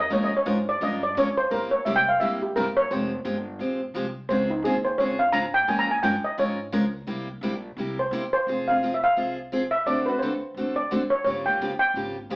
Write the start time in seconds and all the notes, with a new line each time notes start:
Already playing: F2
0.00 D#5
0.10 A#2 F3 G#3 C#4 F4 A#4 C#5
0.24 D#5
0.32 muted upright bass stroke
0.37 C#5
0.46 G#2 F3 G#3 C#4 F4 A#4 C5
0.69 D5
0.81 G2 F3 G#3 C#4 F4 A#4 D#5
1.03 D5
1.15 F2 F3 G#3 C#4 F4 A#4 C#5
1.37 C5
1.51 E2 C3 G3 A#3 E4 G4 A#4
1.71 C#5
1.85 C2 C3 G3 A#3 E4 G4 E5
1.96 G5
2.09 F5
2.20 A#1 C3 G3 A#3 E4 G4 E5
2.42 G4
2.56 G1 C3 G3 A#3 E4 G4 A#4
2.77 C#5
2.90 F1 F3 G#3 C4 G4 C5
3.25 G1 F3 G#3 C4 G4
3.59 A#1 F3 G#3 C4 G4
3.94 C2 F3 G#3 C4 G4
4.29 C#2 C#3 G#3 C4 F4 G#4 C5
4.50 D#4
4.62 D#2 C#3 G#3 C4 F4 G#4
4.85 C5
4.98 F2 C#3 G#3 C4 F4 G#4 C#5
5.19 F5
5.32 G#2 C#3 G#3 C4 F4 G#4 A#5
5.54 G5
5.67 A#2 F3 G#3 C#4 F4 A#4 G#5
5.79 A#5
5.91 G#5
6.03 G2 F3 G#3 C#4 F4 A#4 G5
6.24 D#5
6.38 G#2 F3 G#3 C#4 F4 A#4 C#5
6.72 C#2 F3 G#3 C#4 F4 A#4
7.07 C2 C3 G3 A#3 E4 G4
7.41 A#1 C3 G3 A#3 E4 G4
7.77 C2 C3 G3 A#3 E4 G4
7.99 C5
8.11 E2 C3 G3 A#3 E4 G4
8.33 C5, muted upright bass stroke
8.47 F1 F3 C4 F4 G#4
8.68 C4 F4 G#4 F5
8.83 F3 C4 F4 G#4
8.94 E5
9.04 F5
9.17 C2 F3 C4 F4 G#4
9.52 F3 C4 F4 G#4
9.71 E5
9.86 D2 D3 A3 C4 F#4 A4 D5
10.06 C4 F#4 A4 B4
10.19 D3 A3 C4 F#4 A4 C5
10.54 A1 D3 A3 C4 F#4 A4
10.76 D5
10.91 D3 A3 C4 F#4 A4
11.10 C#5
11.24 G1 C#3 F3 A#3 F4 G4 C#5
11.46 A#3 F4 G4 G5
11.59 G1 C#3 F3 A#3 F4 G4
11.79 G5
11.94 G#1 C#3 F3 A#3 F4 G4
12.29 A#1 C#3 F3 A#3 F4 G4